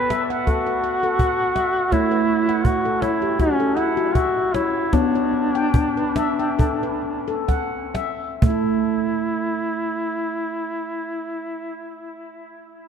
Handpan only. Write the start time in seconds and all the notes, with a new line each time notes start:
Already playing: B4
0.10 E5
0.30 F#5
0.47 A4
0.66 B4
0.84 F#5
1.03 A4
1.20 F#5
1.56 E5
1.92 A3 C#5
2.11 B4
2.49 F#5
2.85 A4
3.02 C#5
3.22 G4
3.39 F#4
3.60 A4
3.77 F#5
3.97 F#4
4.15 E5
4.54 C#5
4.93 B3 C#5
5.15 C#5
5.55 G5
5.97 B4
6.16 E5
6.39 G5
6.59 A4
6.83 B4
7.28 A4
7.48 F#5
7.94 E5
8.42 A3 A4
8.50 A4